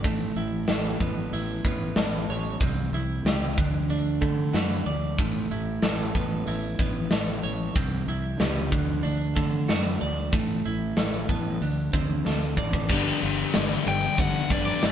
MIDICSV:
0, 0, Header, 1, 6, 480
1, 0, Start_track
1, 0, Key_signature, 2, "major"
1, 0, Tempo, 642398
1, 40, Time_signature, 4, 2, 24, 8
1, 11147, End_track
2, 0, Start_track
2, 0, Title_t, "Lead electric guitar"
2, 0, Program_c, 0, 29
2, 10370, Note_on_c, 0, 79, 90
2, 10602, Note_off_c, 0, 79, 0
2, 10605, Note_on_c, 0, 78, 97
2, 10827, Note_off_c, 0, 78, 0
2, 10846, Note_on_c, 0, 74, 94
2, 11147, Note_off_c, 0, 74, 0
2, 11147, End_track
3, 0, Start_track
3, 0, Title_t, "Clean electric guitar"
3, 0, Program_c, 1, 27
3, 38, Note_on_c, 1, 57, 67
3, 273, Note_on_c, 1, 64, 61
3, 507, Note_on_c, 1, 69, 64
3, 753, Note_on_c, 1, 59, 61
3, 985, Note_off_c, 1, 64, 0
3, 994, Note_on_c, 1, 64, 63
3, 1227, Note_off_c, 1, 59, 0
3, 1236, Note_on_c, 1, 59, 62
3, 1239, Note_off_c, 1, 57, 0
3, 1467, Note_off_c, 1, 69, 0
3, 1475, Note_on_c, 1, 69, 60
3, 1718, Note_on_c, 1, 73, 66
3, 1956, Note_off_c, 1, 64, 0
3, 1957, Note_off_c, 1, 59, 0
3, 1957, Note_off_c, 1, 69, 0
3, 1959, Note_off_c, 1, 73, 0
3, 1960, Note_on_c, 1, 48, 68
3, 2198, Note_on_c, 1, 64, 61
3, 2440, Note_on_c, 1, 67, 65
3, 2677, Note_off_c, 1, 48, 0
3, 2678, Note_off_c, 1, 64, 0
3, 2679, Note_off_c, 1, 67, 0
3, 2680, Note_on_c, 1, 50, 60
3, 2916, Note_on_c, 1, 62, 60
3, 3148, Note_on_c, 1, 57, 63
3, 3388, Note_on_c, 1, 66, 62
3, 3635, Note_on_c, 1, 74, 70
3, 3866, Note_off_c, 1, 57, 0
3, 3873, Note_off_c, 1, 66, 0
3, 3875, Note_on_c, 1, 57, 68
3, 3877, Note_off_c, 1, 62, 0
3, 3877, Note_off_c, 1, 74, 0
3, 3879, Note_off_c, 1, 50, 0
3, 4120, Note_on_c, 1, 64, 65
3, 4360, Note_on_c, 1, 69, 67
3, 4598, Note_on_c, 1, 59, 65
3, 4829, Note_off_c, 1, 64, 0
3, 4838, Note_on_c, 1, 64, 63
3, 5071, Note_off_c, 1, 59, 0
3, 5077, Note_off_c, 1, 57, 0
3, 5080, Note_on_c, 1, 59, 64
3, 5314, Note_off_c, 1, 69, 0
3, 5323, Note_on_c, 1, 69, 65
3, 5555, Note_on_c, 1, 73, 72
3, 5797, Note_off_c, 1, 73, 0
3, 5798, Note_on_c, 1, 48, 71
3, 5799, Note_off_c, 1, 64, 0
3, 5800, Note_off_c, 1, 59, 0
3, 5801, Note_off_c, 1, 69, 0
3, 6042, Note_on_c, 1, 64, 62
3, 6277, Note_on_c, 1, 67, 66
3, 6513, Note_off_c, 1, 48, 0
3, 6516, Note_on_c, 1, 50, 65
3, 6519, Note_off_c, 1, 67, 0
3, 6521, Note_off_c, 1, 64, 0
3, 6747, Note_on_c, 1, 62, 61
3, 6990, Note_on_c, 1, 57, 63
3, 7236, Note_on_c, 1, 66, 62
3, 7481, Note_on_c, 1, 74, 70
3, 7708, Note_off_c, 1, 57, 0
3, 7715, Note_off_c, 1, 62, 0
3, 7717, Note_on_c, 1, 57, 67
3, 7719, Note_off_c, 1, 50, 0
3, 7719, Note_off_c, 1, 66, 0
3, 7721, Note_off_c, 1, 74, 0
3, 7962, Note_on_c, 1, 64, 61
3, 8199, Note_on_c, 1, 69, 64
3, 8436, Note_on_c, 1, 59, 61
3, 8679, Note_off_c, 1, 59, 0
3, 8680, Note_off_c, 1, 57, 0
3, 8681, Note_off_c, 1, 69, 0
3, 8681, Note_on_c, 1, 50, 56
3, 8683, Note_off_c, 1, 64, 0
3, 8917, Note_on_c, 1, 60, 64
3, 9166, Note_on_c, 1, 69, 62
3, 9399, Note_on_c, 1, 74, 70
3, 9636, Note_on_c, 1, 55, 86
3, 9639, Note_off_c, 1, 60, 0
3, 9641, Note_off_c, 1, 74, 0
3, 9641, Note_on_c, 1, 59, 80
3, 9642, Note_off_c, 1, 50, 0
3, 9644, Note_on_c, 1, 62, 99
3, 9645, Note_off_c, 1, 69, 0
3, 9865, Note_off_c, 1, 55, 0
3, 9868, Note_off_c, 1, 59, 0
3, 9869, Note_off_c, 1, 62, 0
3, 9884, Note_on_c, 1, 55, 64
3, 9888, Note_on_c, 1, 59, 72
3, 10100, Note_off_c, 1, 55, 0
3, 10102, Note_off_c, 1, 59, 0
3, 10123, Note_on_c, 1, 55, 69
3, 10129, Note_on_c, 1, 59, 77
3, 10339, Note_off_c, 1, 55, 0
3, 10342, Note_off_c, 1, 59, 0
3, 10365, Note_on_c, 1, 55, 66
3, 10369, Note_on_c, 1, 59, 77
3, 10580, Note_off_c, 1, 55, 0
3, 10582, Note_off_c, 1, 59, 0
3, 10609, Note_on_c, 1, 55, 69
3, 10612, Note_on_c, 1, 59, 71
3, 10822, Note_off_c, 1, 55, 0
3, 10823, Note_off_c, 1, 59, 0
3, 10843, Note_on_c, 1, 55, 68
3, 10847, Note_on_c, 1, 59, 80
3, 11059, Note_off_c, 1, 55, 0
3, 11061, Note_off_c, 1, 59, 0
3, 11085, Note_on_c, 1, 55, 83
3, 11088, Note_on_c, 1, 59, 84
3, 11092, Note_on_c, 1, 62, 95
3, 11147, Note_off_c, 1, 55, 0
3, 11147, Note_off_c, 1, 59, 0
3, 11147, Note_off_c, 1, 62, 0
3, 11147, End_track
4, 0, Start_track
4, 0, Title_t, "Distorted electric guitar"
4, 0, Program_c, 2, 30
4, 9646, Note_on_c, 2, 43, 73
4, 9648, Note_on_c, 2, 50, 76
4, 10831, Note_off_c, 2, 43, 0
4, 10831, Note_off_c, 2, 50, 0
4, 10843, Note_on_c, 2, 62, 80
4, 10856, Note_on_c, 2, 50, 71
4, 10860, Note_on_c, 2, 43, 66
4, 11068, Note_off_c, 2, 43, 0
4, 11075, Note_off_c, 2, 50, 0
4, 11077, Note_on_c, 2, 43, 69
4, 11085, Note_on_c, 2, 50, 71
4, 11094, Note_off_c, 2, 62, 0
4, 11147, Note_off_c, 2, 43, 0
4, 11147, Note_off_c, 2, 50, 0
4, 11147, End_track
5, 0, Start_track
5, 0, Title_t, "Fingered electric bass"
5, 0, Program_c, 3, 33
5, 34, Note_on_c, 3, 33, 80
5, 251, Note_off_c, 3, 33, 0
5, 270, Note_on_c, 3, 33, 78
5, 488, Note_off_c, 3, 33, 0
5, 514, Note_on_c, 3, 33, 80
5, 730, Note_off_c, 3, 33, 0
5, 752, Note_on_c, 3, 33, 74
5, 969, Note_off_c, 3, 33, 0
5, 991, Note_on_c, 3, 33, 79
5, 1209, Note_off_c, 3, 33, 0
5, 1229, Note_on_c, 3, 33, 75
5, 1448, Note_off_c, 3, 33, 0
5, 1468, Note_on_c, 3, 33, 81
5, 1687, Note_off_c, 3, 33, 0
5, 1709, Note_on_c, 3, 33, 74
5, 1927, Note_off_c, 3, 33, 0
5, 1948, Note_on_c, 3, 36, 80
5, 2167, Note_off_c, 3, 36, 0
5, 2187, Note_on_c, 3, 36, 79
5, 2406, Note_off_c, 3, 36, 0
5, 2427, Note_on_c, 3, 37, 81
5, 2672, Note_off_c, 3, 37, 0
5, 2672, Note_on_c, 3, 38, 78
5, 2889, Note_off_c, 3, 38, 0
5, 2908, Note_on_c, 3, 38, 79
5, 3127, Note_off_c, 3, 38, 0
5, 3148, Note_on_c, 3, 50, 78
5, 3367, Note_off_c, 3, 50, 0
5, 3391, Note_on_c, 3, 42, 82
5, 3608, Note_off_c, 3, 42, 0
5, 3631, Note_on_c, 3, 38, 78
5, 3849, Note_off_c, 3, 38, 0
5, 3876, Note_on_c, 3, 33, 83
5, 4091, Note_off_c, 3, 33, 0
5, 4117, Note_on_c, 3, 33, 79
5, 4332, Note_off_c, 3, 33, 0
5, 4355, Note_on_c, 3, 33, 82
5, 4571, Note_off_c, 3, 33, 0
5, 4594, Note_on_c, 3, 33, 78
5, 4810, Note_off_c, 3, 33, 0
5, 4836, Note_on_c, 3, 33, 82
5, 5052, Note_off_c, 3, 33, 0
5, 5070, Note_on_c, 3, 33, 77
5, 5288, Note_off_c, 3, 33, 0
5, 5317, Note_on_c, 3, 33, 84
5, 5532, Note_off_c, 3, 33, 0
5, 5557, Note_on_c, 3, 33, 78
5, 5772, Note_off_c, 3, 33, 0
5, 5793, Note_on_c, 3, 36, 79
5, 6010, Note_off_c, 3, 36, 0
5, 6034, Note_on_c, 3, 36, 85
5, 6251, Note_off_c, 3, 36, 0
5, 6274, Note_on_c, 3, 37, 79
5, 6518, Note_off_c, 3, 37, 0
5, 6518, Note_on_c, 3, 38, 80
5, 6733, Note_off_c, 3, 38, 0
5, 6760, Note_on_c, 3, 38, 77
5, 6974, Note_off_c, 3, 38, 0
5, 6995, Note_on_c, 3, 50, 73
5, 7212, Note_off_c, 3, 50, 0
5, 7242, Note_on_c, 3, 42, 82
5, 7456, Note_off_c, 3, 42, 0
5, 7485, Note_on_c, 3, 38, 80
5, 7698, Note_off_c, 3, 38, 0
5, 7717, Note_on_c, 3, 33, 87
5, 7933, Note_off_c, 3, 33, 0
5, 7965, Note_on_c, 3, 33, 80
5, 8178, Note_off_c, 3, 33, 0
5, 8201, Note_on_c, 3, 33, 78
5, 8416, Note_off_c, 3, 33, 0
5, 8436, Note_on_c, 3, 33, 81
5, 8653, Note_off_c, 3, 33, 0
5, 8675, Note_on_c, 3, 38, 80
5, 8892, Note_off_c, 3, 38, 0
5, 8914, Note_on_c, 3, 38, 75
5, 9132, Note_off_c, 3, 38, 0
5, 9163, Note_on_c, 3, 38, 78
5, 9377, Note_off_c, 3, 38, 0
5, 9388, Note_on_c, 3, 33, 78
5, 9609, Note_off_c, 3, 33, 0
5, 9636, Note_on_c, 3, 31, 81
5, 9787, Note_off_c, 3, 31, 0
5, 9884, Note_on_c, 3, 31, 83
5, 10033, Note_off_c, 3, 31, 0
5, 10124, Note_on_c, 3, 31, 82
5, 10273, Note_off_c, 3, 31, 0
5, 10358, Note_on_c, 3, 31, 82
5, 10509, Note_off_c, 3, 31, 0
5, 10591, Note_on_c, 3, 31, 78
5, 10744, Note_off_c, 3, 31, 0
5, 10835, Note_on_c, 3, 31, 84
5, 10986, Note_off_c, 3, 31, 0
5, 11083, Note_on_c, 3, 31, 83
5, 11147, Note_off_c, 3, 31, 0
5, 11147, End_track
6, 0, Start_track
6, 0, Title_t, "Drums"
6, 31, Note_on_c, 9, 46, 47
6, 32, Note_on_c, 9, 36, 98
6, 106, Note_off_c, 9, 46, 0
6, 107, Note_off_c, 9, 36, 0
6, 505, Note_on_c, 9, 46, 45
6, 507, Note_on_c, 9, 38, 97
6, 580, Note_off_c, 9, 46, 0
6, 581, Note_off_c, 9, 38, 0
6, 750, Note_on_c, 9, 36, 72
6, 825, Note_off_c, 9, 36, 0
6, 996, Note_on_c, 9, 46, 45
6, 1071, Note_off_c, 9, 46, 0
6, 1231, Note_on_c, 9, 36, 79
6, 1305, Note_off_c, 9, 36, 0
6, 1464, Note_on_c, 9, 46, 43
6, 1465, Note_on_c, 9, 38, 103
6, 1538, Note_off_c, 9, 46, 0
6, 1540, Note_off_c, 9, 38, 0
6, 1943, Note_on_c, 9, 46, 43
6, 1948, Note_on_c, 9, 36, 96
6, 2018, Note_off_c, 9, 46, 0
6, 2023, Note_off_c, 9, 36, 0
6, 2435, Note_on_c, 9, 46, 44
6, 2437, Note_on_c, 9, 38, 103
6, 2510, Note_off_c, 9, 46, 0
6, 2511, Note_off_c, 9, 38, 0
6, 2674, Note_on_c, 9, 36, 89
6, 2748, Note_off_c, 9, 36, 0
6, 2912, Note_on_c, 9, 46, 46
6, 2987, Note_off_c, 9, 46, 0
6, 3152, Note_on_c, 9, 36, 78
6, 3226, Note_off_c, 9, 36, 0
6, 3393, Note_on_c, 9, 46, 47
6, 3395, Note_on_c, 9, 38, 96
6, 3468, Note_off_c, 9, 46, 0
6, 3470, Note_off_c, 9, 38, 0
6, 3872, Note_on_c, 9, 46, 45
6, 3874, Note_on_c, 9, 36, 100
6, 3946, Note_off_c, 9, 46, 0
6, 3949, Note_off_c, 9, 36, 0
6, 4351, Note_on_c, 9, 46, 52
6, 4352, Note_on_c, 9, 38, 102
6, 4426, Note_off_c, 9, 46, 0
6, 4427, Note_off_c, 9, 38, 0
6, 4595, Note_on_c, 9, 36, 72
6, 4670, Note_off_c, 9, 36, 0
6, 4832, Note_on_c, 9, 46, 47
6, 4906, Note_off_c, 9, 46, 0
6, 5074, Note_on_c, 9, 36, 81
6, 5149, Note_off_c, 9, 36, 0
6, 5309, Note_on_c, 9, 46, 45
6, 5311, Note_on_c, 9, 38, 100
6, 5384, Note_off_c, 9, 46, 0
6, 5385, Note_off_c, 9, 38, 0
6, 5793, Note_on_c, 9, 46, 47
6, 5796, Note_on_c, 9, 36, 96
6, 5868, Note_off_c, 9, 46, 0
6, 5871, Note_off_c, 9, 36, 0
6, 6274, Note_on_c, 9, 46, 44
6, 6275, Note_on_c, 9, 38, 100
6, 6348, Note_off_c, 9, 46, 0
6, 6350, Note_off_c, 9, 38, 0
6, 6516, Note_on_c, 9, 36, 86
6, 6591, Note_off_c, 9, 36, 0
6, 6761, Note_on_c, 9, 46, 43
6, 6836, Note_off_c, 9, 46, 0
6, 6997, Note_on_c, 9, 36, 77
6, 7072, Note_off_c, 9, 36, 0
6, 7240, Note_on_c, 9, 46, 45
6, 7242, Note_on_c, 9, 38, 95
6, 7315, Note_off_c, 9, 46, 0
6, 7316, Note_off_c, 9, 38, 0
6, 7714, Note_on_c, 9, 46, 44
6, 7717, Note_on_c, 9, 36, 98
6, 7789, Note_off_c, 9, 46, 0
6, 7792, Note_off_c, 9, 36, 0
6, 8195, Note_on_c, 9, 46, 51
6, 8196, Note_on_c, 9, 38, 102
6, 8269, Note_off_c, 9, 46, 0
6, 8271, Note_off_c, 9, 38, 0
6, 8436, Note_on_c, 9, 36, 76
6, 8511, Note_off_c, 9, 36, 0
6, 8681, Note_on_c, 9, 46, 47
6, 8756, Note_off_c, 9, 46, 0
6, 8917, Note_on_c, 9, 36, 78
6, 8992, Note_off_c, 9, 36, 0
6, 9153, Note_on_c, 9, 38, 52
6, 9228, Note_off_c, 9, 38, 0
6, 9394, Note_on_c, 9, 36, 69
6, 9468, Note_off_c, 9, 36, 0
6, 9514, Note_on_c, 9, 36, 74
6, 9589, Note_off_c, 9, 36, 0
6, 9628, Note_on_c, 9, 49, 98
6, 9635, Note_on_c, 9, 36, 103
6, 9702, Note_off_c, 9, 49, 0
6, 9710, Note_off_c, 9, 36, 0
6, 9873, Note_on_c, 9, 42, 55
6, 9948, Note_off_c, 9, 42, 0
6, 10114, Note_on_c, 9, 42, 84
6, 10115, Note_on_c, 9, 38, 108
6, 10189, Note_off_c, 9, 42, 0
6, 10190, Note_off_c, 9, 38, 0
6, 10362, Note_on_c, 9, 42, 58
6, 10437, Note_off_c, 9, 42, 0
6, 10596, Note_on_c, 9, 42, 78
6, 10597, Note_on_c, 9, 36, 106
6, 10671, Note_off_c, 9, 42, 0
6, 10672, Note_off_c, 9, 36, 0
6, 10838, Note_on_c, 9, 36, 88
6, 10842, Note_on_c, 9, 42, 66
6, 10912, Note_off_c, 9, 36, 0
6, 10916, Note_off_c, 9, 42, 0
6, 11078, Note_on_c, 9, 42, 82
6, 11080, Note_on_c, 9, 38, 106
6, 11147, Note_off_c, 9, 38, 0
6, 11147, Note_off_c, 9, 42, 0
6, 11147, End_track
0, 0, End_of_file